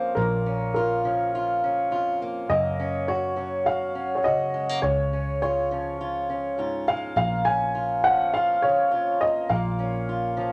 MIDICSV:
0, 0, Header, 1, 4, 480
1, 0, Start_track
1, 0, Key_signature, -5, "minor"
1, 0, Tempo, 583658
1, 134, Time_signature, 4, 2, 24, 8
1, 8654, End_track
2, 0, Start_track
2, 0, Title_t, "Upright piano"
2, 0, Program_c, 0, 0
2, 0, Note_on_c, 0, 72, 79
2, 123, Note_on_c, 0, 70, 70
2, 142, Note_off_c, 0, 72, 0
2, 599, Note_off_c, 0, 70, 0
2, 611, Note_on_c, 0, 70, 65
2, 1778, Note_off_c, 0, 70, 0
2, 2052, Note_on_c, 0, 75, 72
2, 2534, Note_on_c, 0, 73, 66
2, 2546, Note_off_c, 0, 75, 0
2, 3012, Note_on_c, 0, 77, 71
2, 3027, Note_off_c, 0, 73, 0
2, 3415, Note_on_c, 0, 73, 52
2, 3446, Note_off_c, 0, 77, 0
2, 3482, Note_off_c, 0, 73, 0
2, 3488, Note_on_c, 0, 75, 72
2, 3936, Note_off_c, 0, 75, 0
2, 3965, Note_on_c, 0, 73, 72
2, 4445, Note_off_c, 0, 73, 0
2, 4457, Note_on_c, 0, 73, 71
2, 5658, Note_on_c, 0, 77, 77
2, 5690, Note_off_c, 0, 73, 0
2, 5883, Note_off_c, 0, 77, 0
2, 5896, Note_on_c, 0, 77, 78
2, 6126, Note_on_c, 0, 80, 81
2, 6140, Note_off_c, 0, 77, 0
2, 6612, Note_on_c, 0, 78, 78
2, 6623, Note_off_c, 0, 80, 0
2, 6856, Note_on_c, 0, 77, 76
2, 6858, Note_off_c, 0, 78, 0
2, 7092, Note_on_c, 0, 73, 77
2, 7101, Note_off_c, 0, 77, 0
2, 7572, Note_on_c, 0, 75, 75
2, 7586, Note_off_c, 0, 73, 0
2, 7809, Note_on_c, 0, 77, 72
2, 7819, Note_off_c, 0, 75, 0
2, 8654, Note_off_c, 0, 77, 0
2, 8654, End_track
3, 0, Start_track
3, 0, Title_t, "Steel-string acoustic guitar"
3, 0, Program_c, 1, 25
3, 0, Note_on_c, 1, 41, 52
3, 0, Note_on_c, 1, 53, 53
3, 0, Note_on_c, 1, 58, 50
3, 0, Note_on_c, 1, 61, 49
3, 0, Note_on_c, 1, 65, 55
3, 104, Note_off_c, 1, 53, 0
3, 134, Note_on_c, 1, 46, 59
3, 135, Note_off_c, 1, 58, 0
3, 137, Note_off_c, 1, 41, 0
3, 139, Note_on_c, 1, 58, 52
3, 378, Note_off_c, 1, 61, 0
3, 381, Note_on_c, 1, 61, 50
3, 615, Note_off_c, 1, 65, 0
3, 625, Note_on_c, 1, 65, 57
3, 857, Note_on_c, 1, 53, 51
3, 860, Note_off_c, 1, 61, 0
3, 863, Note_on_c, 1, 61, 49
3, 1099, Note_off_c, 1, 65, 0
3, 1110, Note_on_c, 1, 65, 59
3, 1343, Note_off_c, 1, 61, 0
3, 1346, Note_on_c, 1, 61, 51
3, 1568, Note_off_c, 1, 65, 0
3, 1570, Note_on_c, 1, 41, 51
3, 1573, Note_off_c, 1, 46, 0
3, 1578, Note_on_c, 1, 65, 55
3, 1815, Note_off_c, 1, 58, 0
3, 1824, Note_on_c, 1, 58, 54
3, 2025, Note_off_c, 1, 53, 0
3, 2029, Note_off_c, 1, 58, 0
3, 2049, Note_off_c, 1, 41, 0
3, 2052, Note_on_c, 1, 42, 66
3, 2055, Note_off_c, 1, 65, 0
3, 2056, Note_on_c, 1, 58, 54
3, 2297, Note_off_c, 1, 61, 0
3, 2300, Note_on_c, 1, 61, 53
3, 2535, Note_on_c, 1, 66, 53
3, 2765, Note_on_c, 1, 54, 54
3, 2767, Note_off_c, 1, 61, 0
3, 2770, Note_on_c, 1, 61, 51
3, 3006, Note_off_c, 1, 66, 0
3, 3016, Note_on_c, 1, 66, 58
3, 3247, Note_off_c, 1, 61, 0
3, 3250, Note_on_c, 1, 61, 53
3, 3488, Note_off_c, 1, 66, 0
3, 3492, Note_on_c, 1, 49, 52
3, 3498, Note_on_c, 1, 66, 55
3, 3729, Note_off_c, 1, 58, 0
3, 3732, Note_on_c, 1, 56, 51
3, 3860, Note_off_c, 1, 56, 0
3, 3860, Note_on_c, 1, 58, 40
3, 3939, Note_off_c, 1, 54, 0
3, 3942, Note_off_c, 1, 42, 0
3, 3942, Note_off_c, 1, 49, 0
3, 3945, Note_off_c, 1, 66, 0
3, 3972, Note_off_c, 1, 58, 0
3, 3972, Note_on_c, 1, 49, 64
3, 3976, Note_on_c, 1, 56, 50
3, 4217, Note_off_c, 1, 61, 0
3, 4221, Note_on_c, 1, 61, 48
3, 4459, Note_on_c, 1, 65, 55
3, 4691, Note_off_c, 1, 49, 0
3, 4696, Note_on_c, 1, 53, 52
3, 4698, Note_off_c, 1, 61, 0
3, 4701, Note_on_c, 1, 61, 46
3, 4936, Note_off_c, 1, 65, 0
3, 4940, Note_on_c, 1, 65, 57
3, 5175, Note_off_c, 1, 61, 0
3, 5179, Note_on_c, 1, 61, 50
3, 5410, Note_on_c, 1, 44, 52
3, 5413, Note_off_c, 1, 65, 0
3, 5416, Note_on_c, 1, 65, 52
3, 5645, Note_off_c, 1, 56, 0
3, 5654, Note_on_c, 1, 56, 47
3, 5861, Note_off_c, 1, 44, 0
3, 5889, Note_on_c, 1, 46, 59
3, 5890, Note_off_c, 1, 56, 0
3, 5893, Note_on_c, 1, 58, 52
3, 6133, Note_off_c, 1, 61, 0
3, 6136, Note_on_c, 1, 61, 48
3, 6368, Note_off_c, 1, 65, 0
3, 6372, Note_on_c, 1, 65, 54
3, 6606, Note_off_c, 1, 53, 0
3, 6609, Note_on_c, 1, 53, 54
3, 6612, Note_off_c, 1, 61, 0
3, 6615, Note_on_c, 1, 61, 51
3, 6857, Note_off_c, 1, 65, 0
3, 6860, Note_on_c, 1, 65, 57
3, 7083, Note_off_c, 1, 61, 0
3, 7093, Note_on_c, 1, 61, 53
3, 7321, Note_off_c, 1, 65, 0
3, 7327, Note_on_c, 1, 41, 51
3, 7330, Note_off_c, 1, 46, 0
3, 7330, Note_on_c, 1, 65, 57
3, 7572, Note_off_c, 1, 58, 0
3, 7576, Note_on_c, 1, 58, 49
3, 7782, Note_off_c, 1, 53, 0
3, 7784, Note_off_c, 1, 61, 0
3, 7806, Note_on_c, 1, 46, 63
3, 7809, Note_off_c, 1, 41, 0
3, 7809, Note_off_c, 1, 58, 0
3, 7812, Note_on_c, 1, 58, 53
3, 8052, Note_on_c, 1, 61, 50
3, 8287, Note_off_c, 1, 65, 0
3, 8297, Note_on_c, 1, 65, 54
3, 8521, Note_off_c, 1, 61, 0
3, 8526, Note_on_c, 1, 53, 55
3, 8531, Note_on_c, 1, 61, 50
3, 8654, Note_off_c, 1, 46, 0
3, 8654, Note_off_c, 1, 53, 0
3, 8654, Note_off_c, 1, 58, 0
3, 8654, Note_off_c, 1, 61, 0
3, 8654, Note_off_c, 1, 65, 0
3, 8654, End_track
4, 0, Start_track
4, 0, Title_t, "Fingered electric bass"
4, 0, Program_c, 2, 33
4, 0, Note_on_c, 2, 34, 63
4, 103, Note_off_c, 2, 34, 0
4, 136, Note_on_c, 2, 34, 66
4, 2020, Note_off_c, 2, 34, 0
4, 2052, Note_on_c, 2, 30, 62
4, 3938, Note_off_c, 2, 30, 0
4, 3970, Note_on_c, 2, 37, 64
4, 5858, Note_off_c, 2, 37, 0
4, 5889, Note_on_c, 2, 34, 64
4, 7778, Note_off_c, 2, 34, 0
4, 7813, Note_on_c, 2, 34, 65
4, 8654, Note_off_c, 2, 34, 0
4, 8654, End_track
0, 0, End_of_file